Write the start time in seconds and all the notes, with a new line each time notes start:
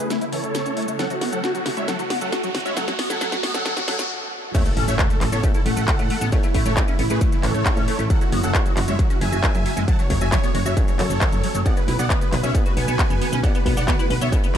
Already playing: C#3 A3 E4 A4, riser
0.10 A3 E4, snare, closed hi-hat, shaker
0.21 A3 E4, closed hi-hat, shaker
0.32 E3 A4 C#5, open hi-hat
0.44 A3, closed hi-hat, shaker
0.55 A3, snare, closed hi-hat, shaker
0.66 C#4, closed hi-hat, shaker
0.77 A3, open hi-hat
0.82 closed hi-hat
0.88 A3, closed hi-hat, shaker
0.99 F#3 A3 F#4 A4 F#5, snare, closed hi-hat, shaker
1.10 F#3 F#4, closed hi-hat, shaker
1.21 B3 F#4, snare, open hi-hat
1.32 F#3 A4 F#5, closed hi-hat, shaker
1.43 F#4, snare, shaker
1.54 F#3 F#4, closed hi-hat, shaker
1.66 C#3 F#4, snare, open hi-hat
1.77 G#3 C#5 E5, closed hi-hat, shaker
1.88 F#3 A4 F#5, snare, closed hi-hat, shaker
1.99 F#3 F#4, closed hi-hat, shaker
2.10 B3 F#4, snare, open hi-hat
2.21 F#3 A4 F#5, closed hi-hat, shaker
2.32 F#4, snare, closed hi-hat, shaker
2.43 F#3 F#4, closed hi-hat, shaker
2.54 C#3 F#4, snare, open hi-hat
2.60 closed hi-hat
2.65 G#3 C#5 E5, closed hi-hat, shaker
2.76 F#3 A4 F#5, snare, closed hi-hat, shaker
2.88 F#3 F#4, snare, closed hi-hat, shaker
2.99 B3 F#4, snare, open hi-hat
3.10 F#3 A4 F#5, snare, closed hi-hat, shaker
3.21 F#3 A4 F#5, snare, closed hi-hat, shaker
3.32 F#3 F#4, snare, closed hi-hat, shaker
3.43 B3 F#4, snare, open hi-hat
3.54 F#3 A4 F#5, snare, closed hi-hat, shaker
3.65 F#3 A4 F#5, snare, closed hi-hat, shaker
3.77 F#3 F#4, snare, closed hi-hat, shaker
3.88 F#3 A4 F#5, snare, open hi-hat
3.99 F#3 F#4, snare, closed hi-hat, shaker
4.55 C#3 E3 A3 E4 C#5 E5, kick, closed hi-hat, crash, impact, shaker
4.66 A3 A4, closed hi-hat, shaker
4.77 A1 C#4 A4, open hi-hat
4.88 A1 A3 C#5 E5, closed hi-hat, shaker
4.99 A3 A4, kick, clap, closed hi-hat, shaker
5.10 A3 A4, closed hi-hat, shaker
5.21 A1 E3 A4, clap, open hi-hat
5.32 A1 B3 A4 C#5, closed hi-hat, shaker
5.43 A3, kick, closed hi-hat, shaker
5.55 E4 A4, closed hi-hat, shaker
5.66 A1 A3 A4 F#5, open hi-hat
5.77 A1 A3, closed hi-hat, shaker
5.88 A3, kick, clap, closed hi-hat, shaker
5.99 A2 A3, closed hi-hat, shaker
6.10 A3, open hi-hat
6.21 A1 B3, closed hi-hat, shaker
6.32 A3 A4 C#5, kick, closed hi-hat, shaker
6.43 A3 E4, closed hi-hat, shaker
6.54 A1 A3 E4, kick, open hi-hat
6.66 A1 A3 A4 C#5, closed hi-hat, shaker
6.77 A3 E4, kick, clap, closed hi-hat, shaker
6.88 C#4 E4, closed hi-hat, shaker
6.99 A1 B3 E4, open hi-hat
7.10 A1 A3 G#4 B4, closed hi-hat, shaker
7.21 E4, kick, closed hi-hat, shaker
7.32 A3 E4, closed hi-hat, shaker
7.43 A1 E3 A4 C#5, clap, open hi-hat
7.54 A1 A3, closed hi-hat, shaker
7.66 A3, kick, clap, closed hi-hat, shaker
7.77 A2 C#4, closed hi-hat, shaker
7.88 A3, open hi-hat
7.99 A1 A3, closed hi-hat, shaker
8.10 F#3 F#4 A4 F#5, kick, closed hi-hat, shaker
8.21 F#3 F#4, closed hi-hat, shaker
8.32 F#1 B3 F#4, open hi-hat
8.43 F#1 F#3 A4 F#5, closed hi-hat, shaker
8.55 F#4, kick, clap, closed hi-hat, shaker
8.66 F#3 F#4, closed hi-hat, shaker
8.77 F#1 C#3 F#4, clap, open hi-hat
8.88 F#1 G#3 C#5 E5, closed hi-hat, shaker
8.99 F#3 F#4, kick, closed hi-hat, shaker
9.10 C#4 F#4, closed hi-hat, shaker
9.21 F#1 F#3 E5 G#5, open hi-hat
9.32 F#1 F#4, closed hi-hat, shaker
9.43 F#3, kick, clap, closed hi-hat, shaker
9.55 F#2 F#3, closed hi-hat, shaker
9.66 F#3, open hi-hat
9.77 F#1 G#3, closed hi-hat, shaker
9.88 F#3 F#5 G#5 A5, kick, closed hi-hat, shaker
9.99 F#3 C#5, closed hi-hat, shaker
10.10 F#1 F#3 C#5, kick, open hi-hat
10.21 F#1 F#4 E5 G#5, closed hi-hat, shaker
10.32 F#3 C#5, kick, clap, closed hi-hat, shaker
10.44 B3 C#5, closed hi-hat, shaker
10.55 F#1 G#3 C#5, open hi-hat
10.66 F#1 F#4 C#5 E5, closed hi-hat, shaker
10.77 F#3 C#5, kick, closed hi-hat, shaker
10.88 F#3 C#5, closed hi-hat, shaker
10.99 F#2 E3 A4 C#5, clap, open hi-hat
11.10 F#1 F#3, closed hi-hat, shaker
11.21 F#3, kick, clap, closed hi-hat, shaker
11.32 F#1 F#3, closed hi-hat, shaker
11.44 F#3, open hi-hat
11.55 F#1 F#3, closed hi-hat, shaker
11.66 D3 B3 F#4 D5 F#5, kick, closed hi-hat, shaker
11.77 B3 B4, closed hi-hat, shaker
11.88 B1 E4 B4, open hi-hat
11.99 B1 B3 D5 F#5, closed hi-hat, shaker
12.10 B3 B4, kick, clap, closed hi-hat, shaker
12.21 B3 B4, closed hi-hat, shaker
12.32 B1 F#3 B4, clap, open hi-hat
12.43 B1 C#4 C#5 E5, closed hi-hat, shaker
12.55 B3 B4, kick, closed hi-hat, shaker
12.66 F#4 B4, closed hi-hat, shaker
12.77 B1 B3 B4 G#5, open hi-hat
12.88 B1 B3, closed hi-hat, shaker
12.99 B3, kick, clap, closed hi-hat, shaker
13.10 F#1 B3, closed hi-hat, shaker
13.21 B3, open hi-hat
13.32 B1 C#4, closed hi-hat, shaker
13.43 B3 D5 F#5, kick, closed hi-hat, shaker
13.55 B3 B4, closed hi-hat, shaker
13.66 B1 B3 B4, kick, open hi-hat
13.77 B1 B3 D5 F#5, closed hi-hat, shaker
13.88 B3 B4, kick, clap, closed hi-hat, shaker
13.99 E4 B4, closed hi-hat, shaker
14.10 B1 C#4 B4, open hi-hat
14.21 B1 B3 C#5 E5, closed hi-hat, shaker
14.32 B3 B4, kick, closed hi-hat, shaker
14.44 B3 B4, closed hi-hat, shaker
14.55 F#3